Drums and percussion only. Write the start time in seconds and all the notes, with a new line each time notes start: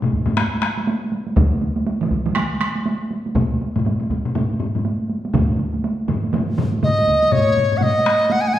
0.02 taiko low-mid
0.12 taiko, taiko high
0.27 taiko low-mid, taiko high
0.37 taiko rim, taiko high
0.62 taiko rim, taiko high
0.77 taiko high
0.87 taiko high
1.12 taiko high
1.27 taiko high
1.36 taiko, taiko mid, taiko high
1.61 taiko high
1.76 taiko high
1.87 taiko high
2.01 taiko mid
2.11 taiko, taiko high
2.26 taiko mid, taiko high
2.35 taiko rim, taiko high
2.60 taiko rim, taiko high
2.76 taiko high
2.86 taiko high
3.11 taiko high
3.26 taiko high
3.35 taiko, taiko low-mid, taiko high
3.61 taiko high
3.76 taiko low-mid, taiko high
3.85 taiko low-mid, taiko high
4.00 taiko low-mid
4.10 taiko, taiko low-mid, taiko high
4.25 taiko low-mid
4.35 taiko low-mid, taiko high
4.60 taiko low-mid, taiko high
4.75 taiko low-mid, taiko high
4.85 taiko high
5.10 taiko high
5.25 taiko high
5.34 taiko, taiko low-mid, taiko mid, taiko high
5.59 taiko high
5.74 taiko high
5.84 taiko high
6.08 taiko low-mid, taiko mid, taiko high
6.24 taiko high
6.33 taiko low-mid, taiko mid, taiko high
6.58 taiko low-mid, taiko mid, taiko high
6.72 taiko high
6.83 taiko low-mid, taiko mid, taiko high
7.07 taiko, taiko high
7.23 taiko high
7.32 taiko low-mid, taiko high
7.47 taiko high
7.57 taiko low-mid, taiko high
7.71 taiko low-mid, taiko high
7.81 taiko low-mid, taiko high
7.96 taiko high
8.06 taiko rim, taiko high
8.20 taiko high
8.30 taiko high
8.44 taiko high
8.54 taiko high